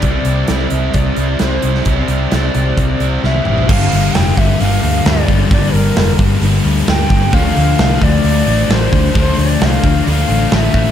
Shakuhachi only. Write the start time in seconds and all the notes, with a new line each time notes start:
Already playing: D5
0.72 E5
0.94 D5
1.41 C5
1.88 D5
3.23 E5
3.69 F5
4.14 G5
4.38 E5
4.60 F5
5.07 D5
5.52 D5
5.74 A#4
6.89 G5
7.34 F5
8.03 D5
8.72 C5
9.19 C5
9.41 D5
9.65 F5
10.09 F5
10.54 E5